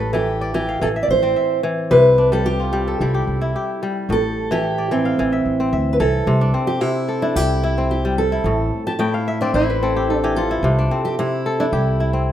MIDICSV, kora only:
0, 0, Header, 1, 2, 480
1, 0, Start_track
1, 0, Key_signature, 0, "major"
1, 0, Tempo, 545455
1, 1677, Time_signature, 4, 2, 24, 8
1, 10842, End_track
2, 0, Start_track
2, 0, Title_t, "Kora"
2, 0, Program_c, 0, 46
2, 0, Note_on_c, 0, 45, 77
2, 0, Note_on_c, 0, 64, 79
2, 0, Note_on_c, 0, 67, 64
2, 0, Note_on_c, 0, 71, 57
2, 114, Note_on_c, 0, 52, 73
2, 364, Note_on_c, 0, 74, 62
2, 466, Note_off_c, 0, 52, 0
2, 477, Note_on_c, 0, 52, 84
2, 516, Note_off_c, 0, 67, 0
2, 531, Note_off_c, 0, 64, 0
2, 604, Note_on_c, 0, 77, 68
2, 707, Note_off_c, 0, 52, 0
2, 717, Note_on_c, 0, 52, 76
2, 846, Note_on_c, 0, 76, 59
2, 1075, Note_off_c, 0, 71, 0
2, 1079, Note_on_c, 0, 60, 78
2, 1196, Note_off_c, 0, 76, 0
2, 1199, Note_on_c, 0, 76, 57
2, 1252, Note_off_c, 0, 77, 0
2, 1339, Note_off_c, 0, 74, 0
2, 1427, Note_off_c, 0, 52, 0
2, 1437, Note_on_c, 0, 52, 78
2, 1679, Note_on_c, 0, 48, 83
2, 1722, Note_off_c, 0, 45, 0
2, 1722, Note_off_c, 0, 52, 0
2, 1918, Note_on_c, 0, 62, 61
2, 2041, Note_on_c, 0, 55, 76
2, 2109, Note_off_c, 0, 76, 0
2, 2285, Note_on_c, 0, 65, 52
2, 2389, Note_off_c, 0, 55, 0
2, 2399, Note_on_c, 0, 55, 84
2, 2530, Note_on_c, 0, 69, 64
2, 2639, Note_off_c, 0, 55, 0
2, 2650, Note_on_c, 0, 55, 71
2, 2663, Note_off_c, 0, 60, 0
2, 2767, Note_on_c, 0, 67, 64
2, 3004, Note_on_c, 0, 64, 70
2, 3057, Note_off_c, 0, 65, 0
2, 3126, Note_off_c, 0, 67, 0
2, 3130, Note_on_c, 0, 67, 64
2, 3356, Note_off_c, 0, 55, 0
2, 3367, Note_on_c, 0, 55, 79
2, 3396, Note_off_c, 0, 62, 0
2, 3607, Note_on_c, 0, 45, 78
2, 3645, Note_off_c, 0, 48, 0
2, 3645, Note_off_c, 0, 55, 0
2, 3690, Note_off_c, 0, 69, 0
2, 3968, Note_on_c, 0, 52, 75
2, 4208, Note_on_c, 0, 74, 54
2, 4312, Note_off_c, 0, 52, 0
2, 4323, Note_on_c, 0, 52, 82
2, 4372, Note_off_c, 0, 67, 0
2, 4383, Note_off_c, 0, 64, 0
2, 4446, Note_on_c, 0, 77, 61
2, 4558, Note_off_c, 0, 52, 0
2, 4568, Note_on_c, 0, 52, 79
2, 4685, Note_on_c, 0, 76, 59
2, 4927, Note_on_c, 0, 60, 68
2, 5036, Note_off_c, 0, 76, 0
2, 5039, Note_on_c, 0, 76, 63
2, 5092, Note_off_c, 0, 77, 0
2, 5183, Note_off_c, 0, 74, 0
2, 5268, Note_off_c, 0, 52, 0
2, 5279, Note_on_c, 0, 52, 70
2, 5520, Note_on_c, 0, 48, 91
2, 5566, Note_off_c, 0, 45, 0
2, 5566, Note_off_c, 0, 52, 0
2, 5643, Note_on_c, 0, 62, 64
2, 5751, Note_off_c, 0, 60, 0
2, 5755, Note_on_c, 0, 60, 66
2, 5949, Note_off_c, 0, 76, 0
2, 5984, Note_off_c, 0, 48, 0
2, 5994, Note_on_c, 0, 48, 89
2, 6235, Note_on_c, 0, 69, 69
2, 6356, Note_on_c, 0, 64, 82
2, 6478, Note_on_c, 0, 67, 70
2, 6715, Note_off_c, 0, 64, 0
2, 6719, Note_on_c, 0, 64, 77
2, 6841, Note_off_c, 0, 60, 0
2, 6845, Note_on_c, 0, 60, 64
2, 7082, Note_on_c, 0, 55, 75
2, 7121, Note_off_c, 0, 62, 0
2, 7319, Note_off_c, 0, 64, 0
2, 7322, Note_on_c, 0, 64, 69
2, 7394, Note_off_c, 0, 69, 0
2, 7442, Note_on_c, 0, 45, 77
2, 7485, Note_off_c, 0, 48, 0
2, 7485, Note_off_c, 0, 55, 0
2, 7721, Note_off_c, 0, 67, 0
2, 7805, Note_on_c, 0, 81, 76
2, 7905, Note_off_c, 0, 45, 0
2, 7915, Note_on_c, 0, 45, 90
2, 7917, Note_on_c, 0, 79, 77
2, 8043, Note_on_c, 0, 77, 68
2, 8096, Note_off_c, 0, 64, 0
2, 8163, Note_on_c, 0, 76, 78
2, 8283, Note_off_c, 0, 60, 0
2, 8286, Note_on_c, 0, 74, 80
2, 8287, Note_on_c, 0, 60, 79
2, 8405, Note_on_c, 0, 72, 80
2, 8534, Note_on_c, 0, 71, 63
2, 8570, Note_off_c, 0, 81, 0
2, 8586, Note_off_c, 0, 60, 0
2, 8647, Note_on_c, 0, 60, 73
2, 8650, Note_on_c, 0, 69, 58
2, 8737, Note_off_c, 0, 79, 0
2, 8769, Note_on_c, 0, 67, 72
2, 8885, Note_off_c, 0, 69, 0
2, 8889, Note_on_c, 0, 69, 69
2, 8922, Note_off_c, 0, 77, 0
2, 9005, Note_off_c, 0, 67, 0
2, 9008, Note_on_c, 0, 67, 72
2, 9010, Note_on_c, 0, 52, 81
2, 9073, Note_off_c, 0, 76, 0
2, 9129, Note_on_c, 0, 65, 70
2, 9247, Note_on_c, 0, 64, 74
2, 9261, Note_off_c, 0, 74, 0
2, 9364, Note_on_c, 0, 48, 90
2, 9403, Note_off_c, 0, 45, 0
2, 9403, Note_off_c, 0, 52, 0
2, 9416, Note_off_c, 0, 71, 0
2, 9450, Note_off_c, 0, 72, 0
2, 9492, Note_on_c, 0, 62, 66
2, 9600, Note_off_c, 0, 60, 0
2, 9603, Note_on_c, 0, 60, 66
2, 9836, Note_off_c, 0, 48, 0
2, 9847, Note_on_c, 0, 48, 80
2, 10048, Note_off_c, 0, 69, 0
2, 10084, Note_on_c, 0, 69, 80
2, 10204, Note_off_c, 0, 64, 0
2, 10208, Note_on_c, 0, 64, 89
2, 10251, Note_off_c, 0, 67, 0
2, 10261, Note_off_c, 0, 65, 0
2, 10321, Note_on_c, 0, 67, 66
2, 10558, Note_off_c, 0, 64, 0
2, 10562, Note_on_c, 0, 64, 72
2, 10674, Note_off_c, 0, 60, 0
2, 10677, Note_on_c, 0, 60, 65
2, 10842, Note_off_c, 0, 48, 0
2, 10842, Note_off_c, 0, 60, 0
2, 10842, Note_off_c, 0, 62, 0
2, 10842, Note_off_c, 0, 64, 0
2, 10842, Note_off_c, 0, 67, 0
2, 10842, Note_off_c, 0, 69, 0
2, 10842, End_track
0, 0, End_of_file